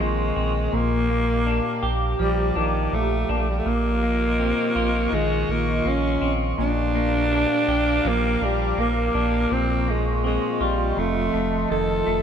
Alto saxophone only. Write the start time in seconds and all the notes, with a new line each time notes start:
0.01 G#3
0.75 A#3
2.21 G3
2.58 D#3
2.95 A3
3.31 A#3
3.40 A3
3.50 G3
3.59 A3
3.69 A#3
5.14 G#3
5.51 A#3
5.88 C#4
6.61 D4
8.08 A#3
8.44 G3
8.80 A#3
9.53 C4
9.90 G#3
10.26 G#3
10.63 G3
10.99 A3
11.71 A4